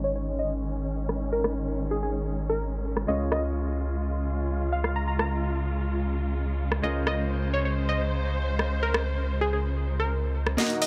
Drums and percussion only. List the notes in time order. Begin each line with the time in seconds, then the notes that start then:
1.09 cross-stick
1.44 cross-stick
2.97 cross-stick
3.32 cross-stick
4.84 cross-stick
5.19 cross-stick
6.72 cross-stick
7.07 cross-stick
8.59 cross-stick
8.94 cross-stick
10.47 cross-stick
10.58 snare, closed hi-hat
10.70 closed hi-hat
10.82 open hi-hat